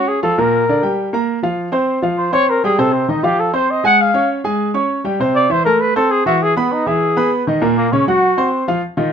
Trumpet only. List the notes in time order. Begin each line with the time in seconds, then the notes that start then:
0.08 G#4
0.23 A4
0.39 A#4
2.18 C5
2.33 C#5
2.50 A#4
2.64 G#4
2.79 A4
2.93 C4
3.10 D#4
3.24 G4
3.40 A4
3.54 C5
3.70 D#5
3.86 F#5
4.01 F5
5.35 D5
5.52 C5
5.65 A#4
5.80 B4
5.96 A4
6.11 G#4
6.26 F#4
6.43 G#4
6.57 B3
6.72 D#4
6.87 G#4
7.77 A#3
7.92 C#4
8.08 F#4